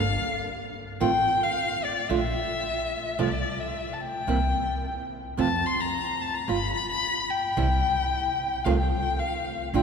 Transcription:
Already playing: G1 F5
1.00 A1 D#3 A3 C4 F4 G5
1.43 F5
1.84 D5
2.09 A#1 D3 A3 D4 F4 E5
3.19 C2 C3 F3 A3 C4 F4 D5
3.60 E5
3.93 A5
4.01 G5
4.27 C2 C3 E3 A#3 C4 E4
5.37 F2 C3 E3 A3 C4 F4 A5
5.66 C6
5.80 A#5
6.22 A5
6.35 A#5
6.48 G1 G3 B3 F4 B5
6.75 B5
6.89 B5
7.31 G5
7.57 C2 C3 E3 G3 C4 E4
8.64 C2 C3 D#3 A3 C4 F4 F5
8.78 G5
8.93 G5
9.19 F5
9.74 A#1 D3 A3 D4 F4 G5

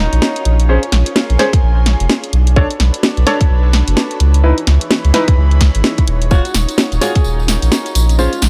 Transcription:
Already playing: C#4 D#4 F4 F#4 A#4 C#5
0.13 A#1, closed hi-hat
0.22 snare
0.36 closed hi-hat
0.45 A#1 C#4 G#4 C6, closed hi-hat
0.60 closed hi-hat
0.69 C#4 G#4 C5
0.83 A#4, closed hi-hat
0.92 A#1, snare, closed hi-hat
1.06 closed hi-hat
1.16 snare
1.30 A#1 G#5, closed hi-hat
1.39 C#4 G#4 C5, snare, closed hi-hat
1.53 kick, closed hi-hat
1.63 A#1
1.86 snare, closed hi-hat
2.00 F1, closed hi-hat
2.10 snare
2.24 closed hi-hat
2.33 B1 D4 F#4 A4 C#5, closed hi-hat
2.47 B4, closed hi-hat
2.56 D4 A4 C#5, kick
2.71 closed hi-hat
2.80 B1, snare, closed hi-hat
2.94 closed hi-hat
3.03 snare
3.17 B1, closed hi-hat
3.27 D4 A4 C#5 A5, snare, closed hi-hat
3.41 kick, closed hi-hat
3.50 B1
3.73 snare, closed hi-hat
3.87 F#1, closed hi-hat
3.97 snare
4.11 closed hi-hat
4.20 C#2, closed hi-hat
4.34 closed hi-hat
4.44 E3 D#4 E4 G#4 B4
4.57 C#5, closed hi-hat
4.67 C#2, snare, closed hi-hat
4.81 closed hi-hat
4.89 B5, snare
5.05 C#2, closed hi-hat
5.14 D#4 E4 B4, snare, closed hi-hat
5.28 kick, closed hi-hat
5.37 C#2
5.51 closed hi-hat
5.61 kick, snare, closed hi-hat
5.75 G#1, closed hi-hat
5.84 snare
5.98 kick, closed hi-hat
6.08 D#1, closed hi-hat
6.22 closed hi-hat
6.31 C#4 D#4 F4 F#4 A#4 C#5, kick, tambourine
6.45 closed hi-hat, tambourine
6.54 D#1, snare, closed hi-hat, tambourine
6.69 closed hi-hat, tambourine
6.78 snare, tambourine
6.92 D#1, closed hi-hat, tambourine
7.01 F4 F#4 G#4 C#5, snare, closed hi-hat, tambourine
7.15 kick, closed hi-hat, tambourine
7.24 D#1, tambourine
7.39 tambourine
7.48 snare, closed hi-hat, tambourine
7.62 A#1, closed hi-hat, tambourine
7.72 snare, tambourine
7.86 closed hi-hat, tambourine
7.95 A#1 G#3 A#3 F4, closed hi-hat, tambourine
8.09 closed hi-hat, tambourine
8.19 C#4 F4 G#4 C5, tambourine
8.33 closed hi-hat, tambourine
8.42 A#1, snare, closed hi-hat, tambourine

